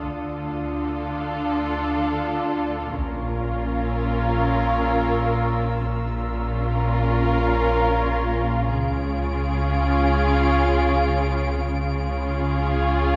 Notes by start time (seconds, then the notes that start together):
Already playing: A5 D#6
0.05 D2 D3 D4 F4 A4
2.96 A#1 A#2 C#4 F4 A#4 A#5
3.68 E6
5.85 A#1 A#2 C#4 F4 A#4
7.18 F6
8.73 C#2 C#3 C#4 F4 G#4 C#5 D7
11.62 C#2 C#3 C#4 F4 G#4